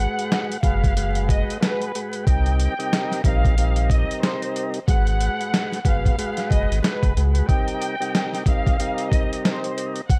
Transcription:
Already playing: G#2 G#3 F#4 B4 F#5
0.19 closed hi-hat
0.32 snare, closed hi-hat
0.52 closed hi-hat
0.63 F#1 G#2 G#3 F#4 B4 F5, kick, closed hi-hat
0.84 kick, closed hi-hat
0.96 G#2 G#3 F#4 B4, closed hi-hat
1.15 closed hi-hat
1.29 D#5, kick, closed hi-hat
1.50 closed hi-hat
1.60 G#2 G#3 F#4 B4, snare, closed hi-hat
1.82 closed hi-hat
1.95 G#2 G#3 F#4 B4, closed hi-hat
2.13 closed hi-hat
2.26 C2 C3 G3 D#4 A#4 G5, kick, closed hi-hat
2.46 closed hi-hat
2.60 closed hi-hat
2.78 C3 G3 D#4 A#4, closed hi-hat
2.93 snare, closed hi-hat
3.12 snare, closed hi-hat
3.24 A#1 C3 G3 D#4 A#4 F5, kick, closed hi-hat
3.45 kick, closed hi-hat
3.58 C3 G3 D#4 A#4, closed hi-hat
3.76 closed hi-hat
3.90 D#5, kick, closed hi-hat
4.11 closed hi-hat
4.21 C5, snare, closed hi-hat
4.42 closed hi-hat
4.56 closed hi-hat
4.74 closed hi-hat
4.88 G#1 G#2 G#3 F#4 B4 F#5, kick, closed hi-hat
5.07 closed hi-hat
5.20 closed hi-hat
5.41 closed hi-hat
5.54 snare, closed hi-hat
5.72 snare, closed hi-hat
5.85 G1 B2 G#3 F#4 B4 F5, kick, closed hi-hat
6.06 kick, closed hi-hat
6.18 G#2 G#3 F#4 B4, closed hi-hat
6.37 snare, closed hi-hat
6.51 F#1 D#5, kick, closed hi-hat
6.70 G#1, closed hi-hat
6.82 G#2 G#3 F#4 B4, snare, closed hi-hat
7.03 F#1, kick, closed hi-hat
7.16 C#2 G#2 G#3 F#4 B4, closed hi-hat
7.35 closed hi-hat
7.48 C3 G3 D#4 A#4 G5, kick, closed hi-hat
7.68 closed hi-hat
7.82 closed hi-hat
8.00 C3 G3 D#4 A#4, closed hi-hat
8.15 snare, closed hi-hat
8.34 snare, closed hi-hat
8.46 C3 G3 D#4 A#4 F5, kick, closed hi-hat
8.67 kick, closed hi-hat
8.79 C3 G3 D#4 A#4, closed hi-hat
8.98 closed hi-hat
9.10 D#5, kick, closed hi-hat
9.33 closed hi-hat
9.45 C5, snare, closed hi-hat
9.64 closed hi-hat
9.78 closed hi-hat
9.96 closed hi-hat
10.08 F#5, kick, closed hi-hat

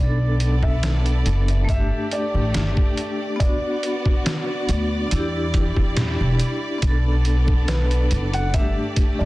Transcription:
Already playing: B1 B3 A4 D5
0.00 D4 A4
0.40 closed hi-hat
0.63 E5, kick
0.83 snare, closed hi-hat
1.06 closed hi-hat
1.26 F#1, closed hi-hat
1.48 closed hi-hat
1.65 A3
1.69 G1 A3 D4 G4 D5 E5, kick, closed hi-hat
1.74 G4
2.11 D5, closed hi-hat
2.34 A1
2.54 G1, snare, closed hi-hat
2.77 kick
2.97 closed hi-hat
3.36 B3 D5
3.40 B3 D4 F#4, kick, closed hi-hat
3.45 F#4
3.83 closed hi-hat
4.06 kick
4.26 snare, closed hi-hat
4.69 D2, closed hi-hat
5.07 G3 D4 E4
5.11 E2 E4, closed hi-hat
5.16 G4
5.54 kick, closed hi-hat
5.77 E2, kick
5.97 snare, closed hi-hat
6.21 E1
6.39 closed hi-hat
6.78 B3 A4, closed hi-hat
6.83 B1 B3 D4, kick
6.88 A4
7.25 closed hi-hat
7.48 kick
7.68 B4, snare, closed hi-hat
7.91 closed hi-hat
8.11 F#1, closed hi-hat
8.33 F#5, closed hi-hat
8.50 A3 G4, kick, closed hi-hat
8.54 G1 A3 D4 E5
8.60 G4
8.96 kick, closed hi-hat
9.19 A1 D5

